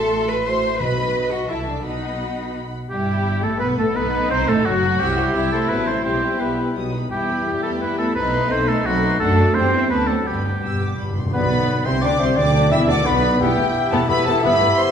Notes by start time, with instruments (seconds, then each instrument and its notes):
Already playing: double bass section A1, viola section A3 F#4, cello section A4, violin section E5 A5 C6
0.28 cello section B4, violin section B5
0.45 viola section A3 F#4, cello section C5, violin section E5 C6
0.79 double bass section B1, timpani B2, viola section F#3 F#4, cello section B4, violin section D#5 B5
1.32 cello section F#4, violin section F#5
1.48 double bass section C2, viola section E3 A4, cello section E4, violin section E5 A5
1.67 cello section D4, violin section D5
1.84 double bass section B1, viola section B3 F#4, cello section D#4, violin section D#5 F#5 B5
2.90 double bass section G1, viola section G3, cello section G3, french horn section G3, violin section E4 G4, oboe G4
3.42 double bass section A1, french horn section A3, cello section A3, viola section A3, violin section A4, oboe A4
3.59 double bass section B1, viola section B3, cello section B3, french horn section B3, violin section B3 B4, oboe B4
3.77 double bass section A1, viola section A3, cello section A3, french horn section A3, violin section A4, oboe A4
3.95 double bass section B1, viola section B3, french horn section B3, cello section B3, violin section D#4 B4, oboe B4
4.29 double bass section C2, viola section C4, cello section C4, french horn section C4, oboe C5, violin section C5
4.47 double bass section A1, viola section A3, cello section A3, french horn section A3, oboe A4, violin section A4
4.65 double bass section F#1, cello section F#3, viola section F#3, french horn section F#3, violin section F#4, oboe F#4
4.99 double bass section C2, cello section G3, french horn section G3 E4, viola section C4 G4, oboe G4, violin section E6
5.18 viola section E4 C5, violin section C6
5.34 double bass section C2, viola section C4 G4, violin section E4 E6
5.52 cello section A3, viola section E4 C5, oboe A4, violin section C6
5.69 double bass section A1, french horn section F#3, cello section B3, viola section C4 F#4, oboe B4, violin section A5
5.87 cello section C4, viola section E4 A4, oboe C5, violin section C6
6.04 double bass section B1, french horn section G3, viola section B3 G4, cello section C4, violin section G4 E5, oboe C5
6.23 viola section E4 B4, violin section G5
6.40 double bass section B1, viola section B3 G4, cello section B3, oboe B4, violin section E5
6.58 viola section E4 B4, violin section G5
6.75 double bass section B1, french horn section F#3 D#4, viola section B3 F#4, violin section D#6
6.93 viola section D#4 B4, violin section B5
7.10 double bass section E2, french horn section G3 E4, cello section G3, viola section B3 G4, violin section E4 G5, oboe G4
7.28 viola section E4 B4, violin section B5
7.46 double bass section E2, viola section B3 G4, violin section G4 G5
7.63 cello section A3, viola section E4 B4, oboe A4, violin section B5
7.81 double bass section E2, viola section B3 G4, cello section B3, violin section E4 G5, oboe B4
7.98 cello section A3, viola section E4 B4, oboe A4, violin section B5
8.15 double bass section B1, french horn section A3 D#4, cello section B3, viola section C4 A4, violin section D#4 B5, oboe B4
8.34 viola section D#4 B4, violin section C6
8.50 double bass section B1, viola section C4 A4, cello section C4, oboe C5, violin section B5
8.67 cello section A3, viola section D#4 B4, oboe A4, violin section C6
8.85 double bass section B1, cello section F#3, viola section C4 A4, oboe F#4, violin section B5
9.04 viola section D#4 B4, violin section C6
9.20 double bass section F#2, cello section A3, french horn section A3 D4, violin section D4 F#5, viola section F#4 A4, oboe A4
9.36 viola section D4 F#4, violin section A5
9.54 double bass section E2, french horn section G3 C4, cello section C4, viola section C4 G4, violin section C4 G5, oboe C5
9.73 viola section E4 C5, violin section E5
9.90 double bass section D2, french horn section F#3 C4, viola section A3 D4, cello section B3, violin section D4 A5, oboe B4
10.07 cello section A3, viola section C4 F#4, oboe A4, violin section F#5
10.26 double bass section G1, timpani G2, french horn section G3 B3, cello section G3, viola section G3 D4, violin section B3 B5, oboe G4
10.45 viola section B3 G4, violin section G5
10.50 timpani G2
10.58 timpani G2
10.63 double bass section G1, timpani G2, viola section G3 D4, violin section E6
10.73 timpani G2
10.80 timpani G2, viola section B3 G4, violin section D6
10.88 timpani G2
10.95 double bass section G1, timpani G2, viola section G3 D4, violin section B5
11.03 timpani G2
11.11 timpani G2
11.16 timpani G2, viola section B3 G4, violin section C6
11.26 timpani G2
11.33 double bass section B1, tuba B1, cello section B2, french horn section B3, bassoon B3, viola section B3, clarinet B4, violin section B4 B5, oboe B4, flute D5
11.85 tuba C2, double bass section C2, cello section C3, french horn section C4, viola section C4, bassoon C4, oboe C5, clarinet C5, violin section C5 C6, flute E5
12.02 double bass section D2, tuba D2, cello section D3, french horn section D4, bassoon D4, viola section D4, clarinet D5, oboe D5, violin section D5 D6, flute G5
12.19 tuba C2, double bass section C2, cello section C3, french horn section C4, bassoon C4, viola section C4, clarinet C5, oboe C5, violin section C5 C6, flute E5
12.36 tuba D2, double bass section D2, timpani B2, cello section D3, bassoon D4, french horn section D4, viola section D4, oboe D5, clarinet D5, violin section D5 D6, flute G5
12.71 tuba E2, double bass section E2, cello section E3, bassoon E4, french horn section E4, viola section E4, violin section E5 E6, oboe E5, clarinet E5, flute G5
12.88 tuba D2, double bass section D2, cello section D3, bassoon D4, french horn section D4, viola section D4, clarinet D5, oboe D5, violin section D5 D6, flute F#5
13.06 tuba B1, double bass section B1, cello section B2, bassoon B3, viola section B3, french horn section B3, violin section B4 B5, clarinet B4, oboe B4, flute D5
13.40 double bass section E1, tuba E1, cello section E2, bassoon B3, french horn section B3 E4, viola section B3 E4, violin section G4 G5, clarinet G4, flute B4, oboe E5
13.57 double bass section E1, tuba E1, cello section E2, viola section A3
13.91 double bass section E1, tuba E1, cello section E2, viola section B3, violin section A4 A5, flute C5
14.08 double bass section E1, tuba E1, cello section E2, viola section A3, bassoon B3, clarinet G4, violin section B4 B5, flute E5, oboe E5
14.25 double bass section E1, tuba E1, cello section E2, viola section B3, violin section A4 A5, flute C5
14.42 tuba G1, double bass section G1, cello section G2, bassoon B3, french horn section B3 E4, viola section B3, clarinet G4, violin section B4 B5, oboe E5, flute E5
14.59 double bass section G1, tuba G1, cello section G2, viola section A3
14.75 violin section C5 C6, flute E5